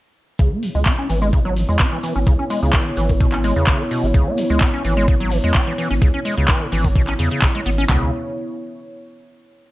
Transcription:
0.39 sub bass C#2, acid bass C#3, analog synth pad B3 E4 C#5, kick, shaker
0.52 acid bass B3
0.63 acid bass E3, open hi-hat, shaker
0.75 sub bass C#2, acid bass G#3, shaker
0.86 acid bass C#4, kick, clap, shaker
0.98 acid bass C#4
1.09 sub bass G#1, acid bass E3, open hi-hat, shaker
1.22 acid bass G#3, shaker
1.33 acid bass C#3, kick, shaker
1.45 acid bass F#3
1.56 acid bass E3, open hi-hat, shaker
1.69 sub bass E2, acid bass G#3, shaker
1.79 acid bass C#4, kick, clap, shaker
1.92 acid bass E3
2.03 acid bass E3, open hi-hat, shaker
2.15 sub bass G#1, acid bass C#4, shaker
2.26 sub bass C#2, acid bass C#3, kick, shaker
2.39 acid bass C#4
2.50 acid bass G#3, open hi-hat, shaker
2.62 sub bass C#2, acid bass C#3, shaker
2.73 acid bass E3, kick, clap, shaker
2.86 acid bass C#3
2.97 sub bass G#1, acid bass E3, open hi-hat, shaker
3.09 acid bass C#3, kick, shaker
3.20 acid bass B2, kick, shaker
3.32 acid bass C#4, clap
3.44 acid bass G#3, open hi-hat, shaker
3.56 sub bass E2, acid bass C#3, shaker
3.67 acid bass C#3, kick, clap, shaker
3.80 acid bass E3
3.91 acid bass B2, open hi-hat, shaker
4.03 sub bass G#1, acid bass C#3, shaker
4.14 sub bass C#2, acid bass C#3, kick, shaker
4.27 acid bass B3
4.38 acid bass E3, open hi-hat, shaker
4.50 sub bass C#2, acid bass G#3, shaker
4.61 acid bass C#4, kick, clap, shaker
4.74 acid bass C#4
4.85 sub bass G#1, acid bass E3, open hi-hat, shaker
4.97 acid bass G#3, shaker
5.08 acid bass C#3, kick, shaker
5.20 acid bass F#3
5.31 acid bass E3, open hi-hat, shaker
5.44 sub bass E2, acid bass G#3, shaker
5.54 acid bass C#4, kick, clap, shaker
5.67 acid bass E3
5.78 acid bass E3, open hi-hat, shaker
5.91 sub bass G#1, acid bass C#4, shaker
6.02 sub bass C#2, acid bass C#3, kick, shaker
6.14 acid bass C#4
6.25 acid bass G#3, open hi-hat, shaker
6.37 sub bass C#2, acid bass C#3, shaker
6.48 acid bass E3, kick, clap, shaker
6.61 acid bass C#3
6.72 sub bass G#1, acid bass E3, open hi-hat, shaker
6.84 acid bass C#3, kick, shaker
6.95 sub bass G#1, acid bass B2, kick, shaker
7.07 acid bass C#4, clap, shaker
7.19 sub bass E2, acid bass C#3, open hi-hat, shaker
7.31 acid bass C#3, shaker
7.42 acid bass C#3, kick, clap, shaker
7.55 acid bass G#3
7.65 sub bass G#1, acid bass B3, open hi-hat, shaker
7.78 acid bass C#4, shaker
7.89 sub bass C#2, acid bass C#3, analog synth pad B3 E4 C#5, kick, clap, floor tom

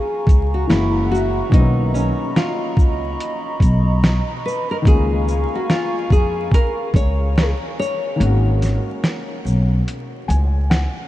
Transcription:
Already playing: upright piano F3 A#3 C#4 D#4 G#4, nylon-string guitar G#4, analog synth pad F5 G#5 A#5 C#6
0.27 upright bass C#2, kick, closed hi-hat, shaker
0.54 nylon-string guitar F#4
0.67 upright bass F#1, upright piano E3 G#3 A#3 C#4, nylon-string guitar E4, analog synth pad E5 F#5, snare
0.71 upright piano F#4, finger snap, closed hi-hat
1.11 nylon-string guitar F#4, shaker
1.49 upright bass B1, upright piano D#3 A#3, analog synth pad D#5 B5, kick
1.53 upright piano B3 C#4, nylon-string guitar D#4, closed hi-hat
1.58 upright piano F#3
1.94 nylon-string guitar C#4, shaker
2.36 nylon-string guitar F4, finger snap, snare, closed hi-hat
2.77 upright bass C#2, kick, shaker
3.20 closed hi-hat
3.60 upright bass B1, kick, closed hi-hat, shaker
4.04 finger snap, snare, closed hi-hat
4.45 nylon-string guitar B4, shaker
4.71 nylon-string guitar A#4
4.82 upright piano D#3 G#3, analog synth pad F5 G#5 C#6, kick
4.86 upright bass C#2, upright piano A#3 C#4, nylon-string guitar G#4, closed hi-hat
4.90 upright piano F4
5.28 shaker
5.55 nylon-string guitar F#4
5.70 nylon-string guitar F4, finger snap, snare, closed hi-hat
6.10 upright bass F2, nylon-string guitar G#4, kick, shaker
6.51 nylon-string guitar A#4, kick, closed hi-hat
6.94 upright bass C#2, nylon-string guitar C#5, kick, closed hi-hat, shaker
7.38 nylon-string guitar G#4, finger snap, snare, closed hi-hat
7.79 nylon-string guitar C#5, shaker
8.16 upright piano D#3 G#3
8.20 upright bass G#1, upright piano A#3 C#4, closed hi-hat
8.25 upright piano F#4
8.62 snare, closed hi-hat, shaker
9.04 finger snap, snare, closed hi-hat
9.45 upright bass B1, shaker
9.88 closed hi-hat
10.28 upright bass C#2, upright piano G#5, closed hi-hat, shaker
10.70 upright piano F#5, finger snap, snare, closed hi-hat

